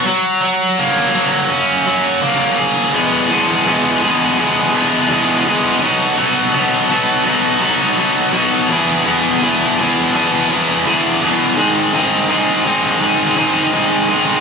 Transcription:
distorted electric guitar
0.06 F#3
0.42 F#3
0.79 A#3
1.14 F#3
1.49 C#4
1.86 F#3
2.22 A#3
2.58 G#4
2.93 E2 B2 E3 G#3 B3 G#4
3.28 E2 B2 E3 G#3 B3 G#4
3.66 E2 B2 E3 G#3 B3 G#4
4.01 E2 B2 E3 G#3 B3 G#4
4.37 E2 B2 E3 G#3 B3 G#4
4.73 E2 B2 E3 G#3 B3 G#4
5.09 E2 B2 E3 G#3 B3 G#4
5.45 E2 B2 E3 G#3 B3 G#4
5.81 B2 F#3 B3 D#4 F#4
6.17 B2 F#3 B3 D#4 F#4
6.53 B2 F#3 B3 D#4 F#4
6.89 B2 F#3 B3 D#4 F#4
7.25 B2 F#3 B3 D#4 F#4
7.61 B2 F#3 B3 D#4 F#4
7.97 B2 F#3 B3 D#4 F#4
8.33 B2 F#3 B3 D#4 F#4
8.69 E2 B2 E3 B3 E4 G#4
9.05 E2 B2 E3 B3 E4 G#4
9.41 E2 B2 E3 B3 E4 G#4
9.77 E2 B2 E3 B3 E4 G#4
10.12 E2 B2 E3 B3 E4 G#4
10.49 E2 B2 E3 B3 E4 G#4
10.85 E2 B2 E3 B3 E4 G#4
11.21 E2 B2 E3 B3 E4 G#4
11.56 G#2 D#3 G#3 C4 D#4 G#4
11.93 G#2 D#3 G#3 C4 D#4 G#4
12.28 G#2 D#3 G#3 C4 D#4 G#4
12.65 G#2 D#3 G#3 C4 D#4 G#4
13.00 G#2 D#3 G#3 C4 D#4 G#4
13.36 G#2 D#3 G#3 C4 D#4 G#4
13.72 G#2 D#3 G#3 C4 D#4 G#4
14.08 G#2 D#3 G#3 C4 D#4 G#4

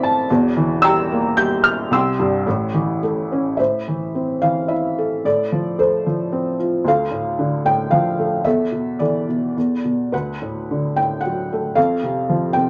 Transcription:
felt piano
Already playing: A1 A2 E3 C4 E4 D5 E5 C6 E6 A6
0.03 A5
0.30 E1 E2
0.57 E3
0.82 G3 G5 A#5 E6
1.12 A#3
1.37 G3 G6
1.64 F6
1.91 C2 G5 C6 E6
2.19 G2
2.46 A1 A2
2.74 E3
3.03 A3
3.32 C#4
3.57 A2 C5 E5
3.88 E3
4.15 C4
4.42 E3 F5
4.68 E4 E5
4.98 A4
5.25 A2 A4 D5
5.52 F3
5.79 A3 A4 C5
6.06 F3
6.32 C4
6.60 F4
6.85 D2 A4 F5
7.11 A2
7.39 D3
7.65 A2 G5
7.91 F3 F5
8.19 A3
8.44 E2 A4 E5
8.72 B2
8.99 E3 A4 D5
9.29 B2
9.57 E2
9.84 B2
10.12 D2 B4 F#5
10.42 A2
10.71 D3
10.96 A2 G5
11.21 F#5
11.26 F#3
11.53 A3
11.75 F2 A4 F5
12.03 C3
12.29 F3
12.53 C3 G5

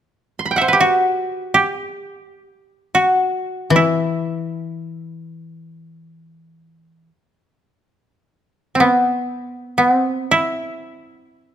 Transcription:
koto
0.39 C6
0.46 B5
0.51 G5
0.56 E5 F#5
0.61 C5
0.68 B4
0.73 G4
0.80 F#4
1.54 G4
2.95 F#4
3.70 E3
3.76 E4
8.75 C4
8.80 B3
9.78 B3
9.91 C4
10.31 E4

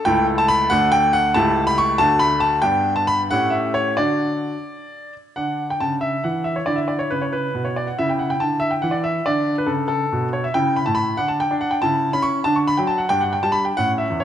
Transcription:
grand piano
0.05 C#2 A3 E4 A4 G5
0.38 A5
0.48 B5
0.70 D2 A3 D4 A4 F#5
0.92 G5
1.13 F#5
1.34 C#2 A3 E4 G4 A5
1.67 B5
1.78 C#6
1.98 D2 A3 D4 F#4 A5
2.19 B5
2.40 A5
2.62 G2 B3 D4 G4 G5
2.96 A5
3.07 B5
3.31 A2 A3 C#4 G4 F#5
3.50 E5
3.74 C#5
3.97 D3 D4 F#4 D5
5.36 D3 D4 F#5
5.70 G5
5.80 C#3 A5
6.01 E5
6.24 E3 F#5
6.44 E5
6.56 C#5
6.66 D3 E4 D5
6.76 E5
6.88 D5
6.99 C#5
7.10 C#3 B4
7.22 C#5
7.32 B4
7.55 B2
7.65 C#5
7.76 D5
7.87 F#5
7.99 C#3 E4 E5
8.09 G5
8.19 F#5
8.30 G5
8.40 D3 A5
8.60 E5
8.71 G5
8.82 E3 F#5
8.91 D5
9.04 E5
9.26 D3 D4 D5
9.58 B4
9.66 C#3 A4
9.88 A4
10.13 B2
10.33 C#5
10.44 E5
10.54 C#3 E4 G5
10.76 B5
10.86 A2 A5
10.95 B5
11.17 D3 D4 F#5
11.28 A5
11.40 G5
11.51 D4
11.61 F#5
11.71 G5
11.82 C#3 E4 A5
12.13 C#4 B5
12.22 C#6
12.44 D3 D4 A5
12.56 C#6
12.67 B5
12.77 F#3 G5
12.87 A5
12.98 F#5
13.09 G2 D4 G5
13.21 F#5
13.33 G5
13.43 G3 A5
13.52 B5
13.65 G5
13.77 A2 C#4 F#5
13.98 E5
14.10 E2
14.20 C#5

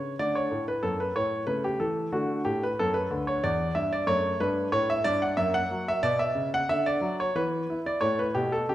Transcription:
grand piano
Already playing: C#3 A3 C#5
0.19 D3 A3 D5
0.35 C#5
0.51 A2
0.68 B4
0.83 F#2 A4
1.00 B4
1.15 A2 C#5
1.47 C#3 A3 B4
1.64 G4
1.80 E3 A4
2.12 D3 A3 F#4
2.45 A2 G4
2.63 B4
2.79 F#2 A4
2.94 B4
3.11 D2
3.27 C#5
3.44 E2 D5
3.75 G2 E5
3.93 D5
4.07 F#2 A3 C#5
4.40 G2 B4
4.72 A2 C#5
4.90 E5
5.04 G2 D5
5.22 F#5
5.37 F#2 A#3 E5
5.54 F#5
5.71 F#3
5.88 E5
6.03 B2 B3 D5
6.19 E5
6.35 C#3
6.54 F#5
6.69 D3 E5
6.86 D5
7.01 F#3
7.20 C#5
7.35 E3 B3 B4
7.70 E4
7.86 D5
8.01 A2 A3 C#5
8.19 B4
8.35 B2 G4
8.52 A4
8.69 C#3 G4

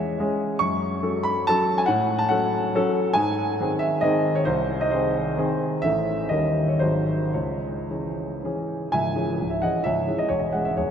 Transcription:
grand piano
Already playing: E2 G#3 C#4 G#4 C#5 E5
0.19 G#3 C#4 G#4
0.59 F#2 C#6
1.02 F#3 C#4 A4
1.23 B5
1.47 F#3 C#4 A4 A5
1.78 G#5
1.86 A2 F#5
2.19 A5
2.29 F#3 C#4 A4 F#5
2.75 F#3 C#4 A4
3.13 G#2 G#5
3.60 D#3 C4 G#4
3.79 E5
4.01 D#3 C4 G#4 D#5
4.35 C#5
4.45 C2 C5
4.81 D#5
4.91 D#3 C4 G#4 C5
5.37 D#3 C4 G#4
5.82 A1 E3 C#4 A4 E5
6.29 D#2 G3 C#4 A#4 D#5
6.68 C#5
6.79 G#1 F#3 D#4 G#4 C5
7.33 C#2 C#5
7.90 E3 C#4 G#4
8.44 E3 C#4 G#4
8.92 C#1 C#2 E5 G#5
9.15 E3 C#4 G#4
9.40 C#1 C#2
9.50 E5
9.62 E3 C#4 G#4 D#5 F#5
9.84 C#1 C#2 C#5 E5
10.07 E3 C#4 G#4
10.18 D#5
10.29 E1 E2 C#5
10.39 D#5
10.53 G#3 C#4 G#4 F#5
10.65 E5
10.77 E1 E2 G#4 C#5

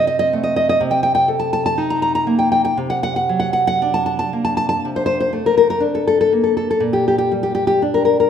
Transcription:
nylon-string guitar
Already playing: C3 C4 G4
0.07 D#5
0.19 D#5
0.33 A3
0.43 D#5
0.56 D#5
0.69 D#5
0.80 C3
0.91 G5
1.03 G5
1.15 G5
1.28 A4
1.40 A5
1.53 A5
1.66 A5
1.78 D#4
1.90 A#5
2.02 A#5
2.15 A#5
2.27 A#3
2.39 G5
2.52 G5
2.65 G5
2.77 C3
2.90 F#5
3.03 F#5
3.16 F#5
3.29 F#3
3.40 F#5
3.53 F#5
3.67 F#5
3.82 D4
3.94 A5
4.06 A5
4.19 A5
4.33 A#3
4.45 A5
4.57 A5
4.69 A5
4.85 C3
4.96 C5
5.06 C5
5.20 C5
5.33 A3
5.46 A#4
5.57 A#4
5.70 A#4
5.80 D4
5.95 A4
6.07 A4
6.21 A4
6.33 A#3
6.44 A4
6.57 A4
6.71 A4
6.80 A#2
6.93 G4
7.08 G4
7.18 G4
7.32 G3
7.43 G4
7.55 G4
7.67 G4
7.82 D4
7.94 A#4
8.05 A#4
8.20 A#4

